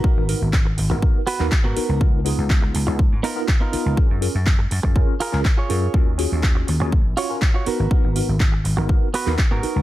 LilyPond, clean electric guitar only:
\new Staff \with { instrumentName = "Clean electric guitar" } { \time 4/4 \key aes \dorian \tempo 4 = 122 <ces' ges' bes'>4 r4. <ces' ges' ces''>8 r16 <ces' ges' bes'>8. | r2 r8 <ces' ees' f' bes'>8 r16 <ces' ees' f' bes'>8. | r2 r8 <f' aes' bes'>8 r16 <f' aes' des''>8. | r2 r8 <f' ges' des''>8 r16 <f' ges' des''>16 <ces' ges' bes'>8~ |
<ces' ges' bes'>4 r4. <ces' ges' ces''>8 r16 <ces' ges' bes'>8. | }